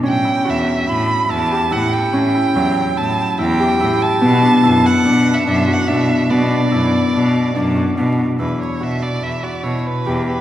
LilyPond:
<<
  \new Staff \with { instrumentName = "Violin" } { \time 5/4 \key e \dorian \tempo 4 = 144 g''4 e''4 b''4 a''4 fis''8 g''8~ | g''2 a''4 g''4. a''8~ | a''4. fis''8~ \tuplet 3/2 { fis''4 e''8 e''4 fis''8 } e''4 | d''1 r4 |
b'8 cis''8 e''8 d''8 e''8 d''8 \tuplet 3/2 { cis''8 cis''16 b'8.~ } b'8 b'8 | }
  \new Staff \with { instrumentName = "Harp" } { \time 5/4 \key e \dorian cis'8 e'8 fis'4 e'4 e'8 g'8 e'4 | cis'8 e'8 fis4 e'4 e'8 g'8 e'4 | b8 d'8 e'4 d'4 d'8 fis'8 d'4 | b8 d'8 e'4 d'4 d'8 fis'8 d'4 |
e'4 fis'8 e'4 fis'8 e'4 g'8 g'8 | }
  \new Staff \with { instrumentName = "Cello" } { \clef bass \time 5/4 \key e \dorian a,4 e,4 a,4 e,4 a,4 | a,4 e,4 a,4 e,4 a,4 | b,4 fis,4 b,4 fis,4 b,4 | b,4 fis,4 b,4 fis,4 b,4 |
e,8 r8 b,4 e,8 r8 b,8 r8 e,4 | }
>>